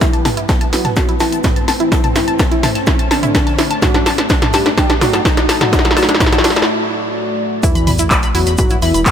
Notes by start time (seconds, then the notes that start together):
Already playing: riser
0.01 A3 C4 E4 B4, kick, snare, closed hi-hat, shaker
0.13 A5, closed hi-hat
0.25 A5, snare, mid tom, open hi-hat, shaker
0.37 E4, closed hi-hat
0.49 A5, kick, snare, closed hi-hat, shaker
0.61 A5, closed hi-hat
0.73 E4 F#4, snare, open hi-hat, shaker
0.85 A5, snare, closed hi-hat, mid tom
0.96 F#4 A5, kick, snare, closed hi-hat, shaker
1.09 E4, closed hi-hat
1.20 E4 A5, snare, open hi-hat, shaker
1.32 A5, closed hi-hat
1.44 E4, kick, snare, closed hi-hat, mid tom, shaker
1.56 A5, closed hi-hat
1.68 A5, snare, open hi-hat, shaker
1.80 E4, closed hi-hat
1.92 C5 A5, kick, snare, closed hi-hat, shaker
2.04 A5, closed hi-hat, mid tom
2.16 E4, snare, open hi-hat, shaker
2.28 A5, closed hi-hat
2.39 A5, kick, snare, closed hi-hat, shaker
2.52 E4, closed hi-hat
2.63 A5, snare, mid tom, open hi-hat, shaker
2.75 A5, snare, closed hi-hat
2.87 E4, kick, snare, closed hi-hat, shaker
2.99 A5, closed hi-hat
3.11 D4 A5, snare, open hi-hat, shaker
3.23 E4, closed hi-hat, mid tom
3.35 A5, kick, snare, closed hi-hat, shaker
3.47 A5, snare, closed hi-hat
3.58 E4, snare, open hi-hat, shaker
3.71 A5, closed hi-hat
3.82 F#4 D5 A5, kick, snare, closed hi-hat, mid tom, shaker
3.94 D4, snare, closed hi-hat
4.06 A5, snare, open hi-hat, shaker
4.18 A5, snare, closed hi-hat
4.29 D4, kick, snare, closed hi-hat, shaker
4.42 A5, snare, closed hi-hat, mid tom
4.53 G4 A5, snare, open hi-hat, shaker
4.66 D4, snare, closed hi-hat
4.77 G4 A5, kick, snare, closed hi-hat, shaker
4.90 A5, snare, closed hi-hat
5.00 D4 F#4, snare, mid tom, open hi-hat, shaker
5.13 A5, snare, closed hi-hat
5.25 A5, kick, snare, closed hi-hat, shaker
5.37 D4, snare, closed hi-hat
5.49 A5, snare, open hi-hat, shaker
5.61 F#4 A5, snare, closed hi-hat, mid tom
5.73 D4, kick, snare, closed hi-hat, shaker
5.79 snare
5.85 A5, snare, closed hi-hat
5.91 snare
5.97 F#4 A5, snare, open hi-hat, shaker
6.03 snare
6.09 D4, snare, closed hi-hat
6.15 snare
6.20 A5, kick, snare, closed hi-hat, mid tom, shaker
6.26 snare
6.32 F#4 A5, snare, closed hi-hat
6.38 snare
6.44 D4, snare, open hi-hat, shaker
6.50 snare
6.56 A5, snare, closed hi-hat
6.62 snare
7.63 G3 E4 B4, kick, closed hi-hat, sub drop, shaker
7.75 E2 B5, closed hi-hat, shaker
7.87 E2 B5, mid tom, open hi-hat, shaker
7.98 E2 E4, closed hi-hat, shaker
8.10 B5, kick, snare, clap, closed hi-hat, shaker
8.23 B5, closed hi-hat, shaker
8.35 E2 E4 F#4, open hi-hat, shaker
8.46 E2 B5, snare, closed hi-hat, shaker
8.58 F#4 B5, kick, closed hi-hat, mid tom, shaker
8.70 E4, closed hi-hat, shaker
8.82 E2 E4 B5, snare, open hi-hat, shaker
8.94 E1 B5, closed hi-hat, shaker
9.06 E4, kick, snare, clap, closed hi-hat, shaker